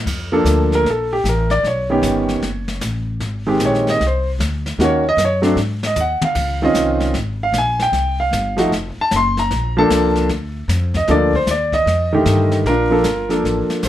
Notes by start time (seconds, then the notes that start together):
0.06 F2, brush sweep, kick, snare, crash
0.32 F3 A#3 D4 A4
0.44 D2, snare, hi-hat pedal
0.72 A#4, snare
0.84 A#1, brush sweep, snare
0.90 A4
1.13 G4
1.24 A1, snare, hi-hat pedal
1.29 A#4
1.50 D5, snare
1.63 B1 C#5, brush sweep, snare
1.90 D#3 B3 C#4 G4
2.01 G1, snare, hi-hat pedal
2.29 snare
2.41 F#1, brush sweep, snare
2.68 snare
2.81 A1, snare, hi-hat pedal
3.20 G#1, brush sweep, snare
3.47 D#3 G#3 C4 G4
3.60 A#1, snare, hi-hat pedal
3.65 C#5
3.75 snare
3.87 D#5, snare
4.00 C2, brush sweep, snare
4.07 C5
4.39 D2, snare, hi-hat pedal
4.66 snare
4.78 D#2 D#3 A#3 C#4 F#4, brush sweep, snare
4.84 C#5
5.09 D#5
5.17 F#2, snare, hi-hat pedal
5.25 C#5
5.42 F#3 A3 C4 D4, snare
5.56 G#2, snare
5.83 D#5, snare
5.96 D#2, hi-hat pedal, mid tom
6.00 F#5
6.22 F5, muted upright bass stroke, mid tom
6.35 C#2, brush sweep, kick, snare, crash
6.62 D#3 C4 C#4 F4 D#5
6.74 C2, snare, hi-hat pedal
7.00 snare
7.14 G#1, brush sweep, snare
7.43 F5
7.52 A#1, snare, hi-hat pedal
7.58 G#5
7.79 G5, snare
7.92 C2, brush sweep, snare
8.20 F5
8.31 G1, snare, hi-hat pedal
8.57 F3 A3 D#4 F#4, snare
8.71 F1, brush sweep, snare
8.97 A5, muted upright bass stroke
9.11 F#1, snare, hi-hat pedal
9.16 C6
9.37 A#5, snare
9.51 A#1, brush sweep, snare
9.77 F3 A#3 D4 A4 A5
9.90 C2, snare, hi-hat pedal
10.15 snare
10.29 D2, brush sweep, snare
10.68 F2, snare, hi-hat pedal
10.94 D#5, kick, snare
11.08 D2 F3 A#3 D4 A4 D5, brush sweep, snare
11.33 C5, kick
11.46 D#2, snare, hi-hat pedal
11.51 D5
11.72 D#5, kick, snare
11.86 F2, brush sweep, snare
12.13 D3 D#3 A3 G4
12.25 G2, snare, hi-hat pedal
12.52 snare
12.64 A#1 D4 A#4, brush sweep, snare
12.69 F4
12.90 F3 A#3 D4 A4
13.04 G1, snare, hi-hat pedal
13.29 F3 A#3 D4 A4, snare
13.44 A1, brush sweep, snare
13.68 muted upright bass stroke, snare
13.83 A#1 C5, snare, hi-hat pedal